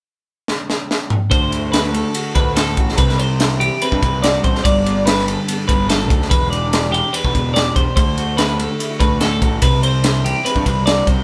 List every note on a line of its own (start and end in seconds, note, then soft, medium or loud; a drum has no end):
0.48 snare medium
0.70 snare medium
0.91 snare medium
1.10 mid tom medium
1.30 2.02 D2 medium
1.30 2.97 D3 medium
1.30 1.72 C5 medium
1.30 kick loud
1.30 ride medium
1.50 1.62 E4 medium
1.50 ride soft
1.62 1.72 F#4 soft
1.72 1.83 E4 soft
1.72 1.93 B4 medium
1.72 snare loud
1.72 ride medium
1.83 2.14 G4 soft
1.93 2.95 A3 medium
1.93 2.35 A4 medium
1.93 ride medium
2.15 2.56 F#4 medium
2.15 ride medium
2.35 2.78 D2 medium
2.35 2.98 A2 medium
2.35 2.56 B4 medium
2.35 kick medium
2.35 ride medium
2.56 2.77 F#4 medium
2.56 2.97 A4 medium
2.56 snare medium
2.56 ride medium
2.77 2.95 A1 medium
2.77 2.96 F#4 medium
2.77 kick medium
2.77 ride soft
2.89 snare soft
2.98 3.69 C2 medium
2.98 3.61 C3 medium
2.98 3.19 B4 medium
2.98 kick medium
2.98 ride medium
3.09 snare soft
3.19 3.81 C4 soft
3.19 3.60 C5 medium
3.19 ride medium
3.40 4.23 E4 soft
3.40 snare medium
3.40 ride medium
3.60 4.63 E3 soft
3.60 3.81 G4 medium
3.60 ride medium
3.82 4.43 C4 medium
3.82 4.22 B4 medium
3.82 ride medium
3.92 4.01 G2 medium
3.92 kick medium
4.02 4.38 C2 medium
4.02 4.62 G2 medium
4.02 kick medium
4.02 ride soft
4.22 4.63 F#4 medium
4.22 4.43 D5 medium
4.22 snare medium
4.22 ride medium
4.44 4.53 A1 medium
4.44 4.62 C4 soft
4.44 4.64 C5 medium
4.44 kick medium
4.44 ride soft
4.55 snare soft
4.64 5.35 G1 medium
4.64 5.68 G2 medium
4.64 5.05 D5 medium
4.64 kick medium
4.64 ride medium
4.85 4.96 B3 soft
4.85 ride soft
4.96 5.47 D4 soft
5.05 5.16 E4 soft
5.05 5.26 B4 medium
5.05 snare loud
5.05 ride medium
5.16 6.31 G4 soft
5.16 snare soft
5.26 6.92 D3 medium
5.26 5.67 A4 medium
5.26 ride medium
5.47 5.58 B3 medium
5.47 ride medium
5.58 6.31 D4 soft
5.68 6.10 G1 medium
5.68 5.88 G2 medium
5.68 5.89 B4 medium
5.68 kick medium
5.68 ride medium
5.89 6.10 G2 medium
5.89 6.30 A4 medium
5.89 snare medium
5.89 ride medium
6.10 6.28 D2 medium
6.10 6.31 F#2 medium
6.10 kick medium
6.10 ride soft
6.22 snare soft
6.30 7.01 E1 medium
6.30 7.97 E2 medium
6.30 6.50 B4 medium
6.30 kick loud
6.30 ride medium
6.50 7.13 D4 soft
6.50 6.92 D5 medium
6.50 ride soft
6.73 7.54 G4 soft
6.73 snare loud
6.73 ride medium
6.92 7.94 E3 medium
6.92 7.13 G4 medium
6.92 ride medium
7.13 7.75 D4 medium
7.13 7.53 B4 medium
7.13 ride medium
7.24 7.33 B1 medium
7.24 kick medium
7.33 7.70 E1 medium
7.33 7.94 B2 medium
7.33 kick medium
7.33 ride soft
7.54 7.94 G4 medium
7.54 7.75 D5 medium
7.54 snare medium
7.54 ride medium
7.76 7.85 E1 medium
7.76 7.94 D4 medium
7.76 7.95 C5 medium
7.76 kick medium
7.76 ride soft
7.96 8.67 D2 medium
7.96 9.62 D3 medium
7.96 8.37 C5 medium
7.96 kick medium
7.96 ride medium
8.18 8.38 F#4 medium
8.18 ride soft
8.37 8.49 E4 soft
8.37 8.58 B4 medium
8.37 snare medium
8.37 ride medium
8.49 8.79 G4 soft
8.58 9.60 A3 soft
8.58 8.99 A4 medium
8.58 ride medium
8.79 8.90 E4 medium
8.79 ride medium
8.90 9.21 F#4 soft
9.00 9.43 D2 medium
9.00 9.63 A2 medium
9.00 9.21 B4 medium
9.00 kick medium
9.00 ride medium
9.21 9.42 F#4 medium
9.21 9.62 A4 medium
9.21 snare medium
9.21 ride medium
9.42 9.59 A1 medium
9.42 9.61 F#4 medium
9.42 kick medium
9.42 ride soft
9.62 10.32 C2 medium
9.62 10.25 C3 medium
9.62 9.83 B4 medium
9.62 kick medium
9.62 ride medium
9.83 10.44 C4 medium
9.83 10.24 C5 medium
9.83 ride medium
10.04 10.87 E4 medium
10.04 snare loud
10.04 ride medium
10.25 11.24 E3 medium
10.25 10.45 G4 medium
10.25 ride medium
10.45 11.07 C4 medium
10.45 10.85 B4 medium
10.45 ride medium
10.55 10.64 G2 medium
10.55 kick medium
10.66 11.01 C2 medium
10.66 11.24 G2 medium
10.66 kick medium
10.66 ride medium
10.86 11.24 F#4 medium
10.86 11.07 D5 medium
10.86 snare medium
10.86 ride medium
11.07 11.16 C2 medium
11.07 11.24 C4 soft
11.07 11.24 C5 medium
11.07 kick medium
11.07 ride medium